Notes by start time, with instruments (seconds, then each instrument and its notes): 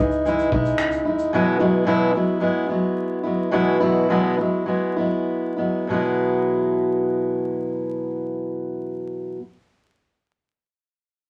Already playing: upright bass C#2, steel-string acoustic guitar E4
0.00 steel-string acoustic guitar G#3 D#4
0.11 shaker
0.25 steel-string acoustic guitar E3 G#3 D#4 E4, shaker
0.39 shaker
0.52 upright bass B1, steel-string acoustic guitar G#3 D#4 E4, kick
0.65 shaker
0.78 upright bass C#2, finger snap, shaker
0.91 shaker
1.05 upright bass D#2, steel-string acoustic guitar D#4 E4
1.09 steel-string acoustic guitar G#3
1.19 shaker
1.33 steel-string acoustic guitar E2 B2 F#3 G#3 B3 E4
1.59 steel-string acoustic guitar E2 B2 F#3 G#3 B3 E4
1.85 steel-string acoustic guitar E2 B2 F#3 G#3 B3 E4
2.14 steel-string acoustic guitar F#3 G#3 B3 E4
2.40 steel-string acoustic guitar F#3 G#3 B3 E4
2.68 steel-string acoustic guitar F#3 G#3 B3 E4
3.23 steel-string acoustic guitar F#3 G#3 B3 E4
3.51 steel-string acoustic guitar E2 B2 F#3 G#3 B3 E4
3.80 steel-string acoustic guitar E2 B2 F#3 G#3 B3 E4
4.09 steel-string acoustic guitar E2 B2 F#3 G#3 B3 E4
4.37 steel-string acoustic guitar F#3 G#3 B3 E4
4.66 steel-string acoustic guitar F#3 G#3 B3 E4
4.96 steel-string acoustic guitar F#3 G#3 B3 E4
5.57 steel-string acoustic guitar F#3 G#3 B3 E4
5.87 steel-string acoustic guitar E2 B2 F#3 G#3
5.93 steel-string acoustic guitar B3 E4